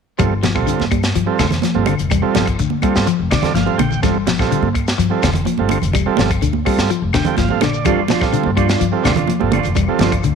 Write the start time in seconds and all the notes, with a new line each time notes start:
0.18 G1 G3 C4 F4 A4, kick, closed hi-hat, high conga, low conga, claves, shekere
0.43 F3, snare, closed hi-hat, high conga, shekere
0.55 A#1 G3 C4 F4 A4, kick, claves, shekere
0.67 D3, closed hi-hat, high conga, shekere
0.80 G2, snare, high conga
0.91 G3, kick, closed hi-hat, high conga, claves, shekere
1.03 snare, closed hi-hat, shekere
1.15 G2 F3, closed hi-hat, high conga, shekere
1.26 G3 C4 F4 A4
1.39 F1 D3, kick, snare, closed hi-hat, claves, shekere
1.51 snare, closed hi-hat, low conga, shekere
1.62 F3, snare, closed hi-hat, high conga
1.74 G1 G3 C4 F4 A4, high conga
1.86 D3, closed hi-hat, high conga, claves, shekere
1.99 F1, closed hi-hat, shekere
2.10 G3, kick, closed hi-hat, high conga, low conga, claves, shekere
2.22 G3 C4 F4 A4
2.35 G1 F3, snare, closed hi-hat, high conga, shekere
2.46 kick, closed hi-hat, claves, shekere
2.59 D2 D3, closed hi-hat, high conga, shekere
2.70 high conga
2.82 G3 C4 F4 A4, kick, closed hi-hat, high conga, claves, shekere
2.96 G2, snare, shekere
3.06 F3, closed hi-hat, high conga, shekere
3.19 F1
3.31 D3 D5, kick, snare, closed hi-hat, claves, shekere
3.42 G3 C4 F4 A4, muted upright bass stroke, snare, closed hi-hat, low conga, shekere
3.54 G1 F3 F5, snare, closed hi-hat, high conga
3.65 G3 C4 F4 A4, high conga
3.78 A#1 D3 G5, closed hi-hat, high conga, claves, shekere
3.91 low conga, shekere
4.02 G1 G3 C4 F4 A4, kick, snare, closed hi-hat, high conga, low conga, claves, shekere
4.27 F3, snare, closed hi-hat, high conga, shekere
4.39 A#1 G3 C4 F4 A4, kick, snare, claves, shekere
4.51 D3, closed hi-hat, high conga, shekere
4.62 G2, high conga
4.75 muted clean electric guitar stroke, kick, closed hi-hat, claves, shekere
4.87 snare, closed hi-hat, shekere
4.98 G2 F3, closed hi-hat, high conga, shekere
5.10 G3 C4 F4 A4
5.23 F1 D3, kick, snare, closed hi-hat, claves, shekere
5.34 closed hi-hat, low conga, shekere
5.45 F3, closed hi-hat, high conga
5.58 G1 G3 C4 F4 A4, high conga
5.69 D3, closed hi-hat, high conga, claves, shekere
5.82 F1, closed hi-hat, low conga, shekere
5.93 G3, kick, closed hi-hat, high conga, low conga, claves, shekere
6.06 G3 C4 F4 A4
6.17 G1 F3, snare, closed hi-hat, high conga, shekere
6.31 kick, closed hi-hat, claves, shekere
6.41 D2 D3, closed hi-hat, high conga, shekere
6.53 high conga
6.65 G3 C4 F4 A4, kick, open hi-hat, claves, shekere
6.78 G2, snare, shekere
6.89 F3, closed hi-hat, high conga, shekere
7.02 F1
7.13 D3 G5, kick, snare, closed hi-hat, claves, shekere
7.25 G3 C4 F4 A4, muted upright bass stroke, closed hi-hat, low conga, shekere
7.37 G1 F3 F5, kick, snare, closed hi-hat, high conga
7.49 G3 C4 F4 A4, high conga
7.61 A#1 D3 D5, snare, closed hi-hat, high conga, claves, shekere
7.74 shekere
7.85 G1 F3 G3 A#3 C4 D4 F4 A4, kick, closed hi-hat, high conga, low conga, claves, shekere
8.08 F3 A#3 D4 F4, snare, closed hi-hat, high conga, shekere
8.21 A#1 G3 C4 F4 A4, kick, snare, claves, shekere
8.32 D3, closed hi-hat, high conga, shekere
8.44 G2, high conga
8.56 F3 G3 A#3 D4 F4, kick, closed hi-hat, claves, shekere
8.69 A#3 D4 F4, snare, closed hi-hat, shekere
8.80 G2 F3, closed hi-hat, high conga, shekere
8.92 G3 C4 F4 A4
9.04 F1 D3 F3 A#3 D4 F4, kick, snare, closed hi-hat, claves, shekere
9.16 A#3 D4 F4, closed hi-hat, low conga, shekere
9.27 F3, closed hi-hat, high conga
9.40 G1 G3 C4 F4 A4, high conga
9.52 D3 F3 A#3 D4 F4, closed hi-hat, high conga, claves, shekere
9.64 F1, closed hi-hat, low conga, shekere
9.75 G3, kick, closed hi-hat, high conga, low conga, claves, shekere
9.88 G3 C4 F4 A4
9.99 G1 F3 A#3 D4 F4, snare, closed hi-hat, high conga, shekere
10.12 kick, closed hi-hat, claves, shekere
10.23 D2 D3, closed hi-hat, high conga, shekere